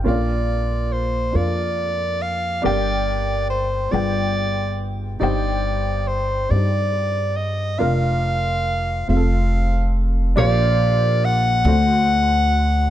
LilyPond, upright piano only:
<<
  \new Staff \with { instrumentName = "Upright piano" } { \time 6/8 \key bes \major \tempo 4. = 47 <des' d' f' bes' f''>4 r8 <d' f' bes' f''>4 r8 | <d' g' bes' g''>4 r8 <f' aes' b' g''>4 r8 | <ees' g' c'' g''>4 r8 <d' ees' g' c'' d''>4 r8 | <d' f' bes' f''>4 r8 <c' f' aes' a' f''>4 r8 |
<d' g' bes' c'' f''>4 r8 <d' fis' a' c'' fis''>4 r8 | }
  \new Staff \with { instrumentName = "Upright piano" } { \clef bass \time 6/8 \key bes \major bes,4. r4. | g,4. g,4. | g,4. r4. | r2. |
bes,4. d4. | }
>>